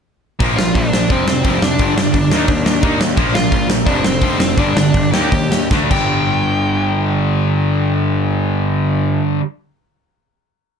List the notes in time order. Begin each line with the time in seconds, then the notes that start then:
0.39 A#1 A#2 F3 A#3, kick, open hi-hat
0.57 A#1 A#2 F3 F4 F5, snare
0.75 A#1 A#2 F3 D4 D5, kick, open hi-hat
0.93 A#2 F3, snare
1.09 F1 F2 C3 F3 C4 C5, kick, open hi-hat
1.26 F1 F2 C3, snare
1.43 F1 F2 C3 F3 C4 C5, kick, open hi-hat
1.61 F1 F2 C3 D4 D5, snare
1.78 G1 G2 D3 G3, kick, open hi-hat
1.96 G1 G2 D3, snare
2.14 G1 G2 D3, kick, open hi-hat
2.30 D#2 D#3 A#3 D#4, snare
2.48 D#2 D#3 A#3, kick, open hi-hat
2.65 D#2 D#3 A#3, snare
2.82 D#2 D#3 A#3 D#4, kick, open hi-hat
2.99 D#2 D#3 A#3, snare
3.16 A#1 A#2 F3 A#3, kick, open hi-hat
3.33 A#1 A#2 F3 F4 F5, snare
3.51 A#1 A#2 F3, kick, open hi-hat
3.68 A#2 F3, snare
3.85 F1 F2 C3 F3 D4 D5, kick, open hi-hat
4.03 F1 F2 C3 C4 C5, snare
4.21 F1 F2 C3 F3, kick, open hi-hat
4.38 F1 F2 C3, snare
4.57 G1 G2 D3 G3 D4 D5, kick, open hi-hat
4.75 G1 G2 D3, snare
4.93 G1 G2 D3, kick, open hi-hat
5.11 D#2 D#3 A#3 D#4 G4 G5, snare
5.31 D#2 D#3 A#3, kick, open hi-hat
5.51 D#2 D#3 A#3, snare
5.71 D2 D3 A3 D4, kick, snare
5.89 G1 G2 D3 G5, kick, crash
5.93 G3